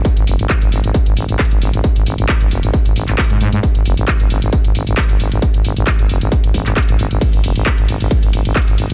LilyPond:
<<
  \new Staff \with { instrumentName = "FM bass" } { \clef bass \time 4/4 \key fis \mixolydian \tempo 4 = 134 r16 gis,,16 fis,,16 gis,,16 r16 gis,,16 gis,,16 gis,,16 r16 gis,,16 gis,,16 gis,,16 r16 gis,,16 gis,,16 gis,,16 | r16 gis,,16 gis,,16 gis,,16 r16 gis,,16 fis,,16 gis,,16 r16 gis,,16 gis,,16 gis,,16 r16 gis,16 gis,16 gis,16 | r16 gis,,16 fis,,16 gis,,16 r16 gis,,16 gis,,16 gis,,16 r16 gis,,16 gis,,16 gis,,16 r16 gis,,16 gis,,16 gis,,16 | r16 gis,,16 gis,,16 gis,,16 r16 gis,,16 fis,,16 gis,,16 r16 gis,,16 gis,,16 gis,,16 r16 gis,,16 gis,,16 gis,,16 |
r16 gis,,16 fis,,16 gis,,16 r16 gis,,16 gis,,16 gis,,16 r16 gis,,16 gis,,16 gis,,16 r16 gis,,16 gis,,16 gis,,16 | }
  \new DrumStaff \with { instrumentName = "Drums" } \drummode { \time 4/4 <hh bd tamb>16 <hh tamb>16 <hho tamb>16 <hh tamb>16 <hc hh bd tamb>16 <hh tamb>16 <hho tamb>16 <hh tamb>16 <hh bd tamb>16 <hh tamb>16 <hho tamb>16 <hh tamb>16 <hc hh bd tamb>32 hh32 <hh tamb>16 <hho tamb>16 <hh tamb>16 | <hh bd tamb>16 <hh tamb>16 <hho tamb>16 <hh tamb>16 <hc hh bd tamb>16 <hh tamb>16 <hho tamb>16 <hh tamb>16 <hh bd tamb>16 <hh tamb>16 <hho tamb>16 <hc hh tamb>16 <hc hh bd tamb>32 hh32 <hh tamb>16 <hho tamb>16 <hh tamb>16 | <hh bd tamb>16 <hh tamb>16 <hho tamb>16 <hh tamb>16 <hc hh bd tamb>16 <hh tamb>16 <hho tamb>16 <hh tamb>16 <hh bd tamb>16 <hh tamb>16 <hho tamb>16 <hh tamb>16 <hc hh bd tamb>32 hh32 <hh tamb>16 <hho tamb>16 <hh tamb>16 | <hh bd tamb>16 <hh tamb>16 <hho tamb>16 <hh tamb>16 <hc hh bd tamb>16 <hh tamb>16 <hho tamb>16 <hh tamb>16 <hh bd tamb>16 <hh tamb>16 <hho bd tamb>16 <hc hh tamb>16 <hc hh bd tamb>32 hh32 <hh tamb>16 <hho tamb>16 <hh tamb>16 |
<hh bd cymr tamb>16 <hh tamb>16 <hho cymr tamb>16 <hh tamb>16 <hc hh bd cymr tamb>16 <hh tamb>16 <hho cymr tamb>16 <hh tamb>16 <hh bd cymr tamb>16 <hh tamb>16 <hho cymr tamb>16 <hh tamb>16 <hc hh bd cymr tamb>32 hh32 <hh tamb>16 <hho cymr tamb>16 <hh tamb>16 | }
>>